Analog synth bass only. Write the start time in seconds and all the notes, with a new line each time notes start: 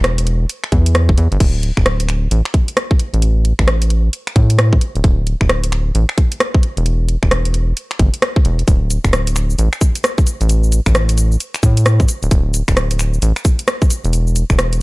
Already playing: E1
0.72 E2
1.09 D1
1.18 E2
1.32 G1
1.40 D1
1.77 D1
2.31 A1
3.14 A1
3.59 A1
4.36 A2
4.95 D1
5.04 D1
5.41 D1
5.95 A1
6.77 E1
7.23 E1
7.99 G1
8.45 E1
8.68 D1
9.04 D1
9.59 A1
10.41 A1
10.86 A1
11.63 A2
12.23 D1
12.31 D1
12.68 D1
13.22 A1
14.04 E1
14.50 E1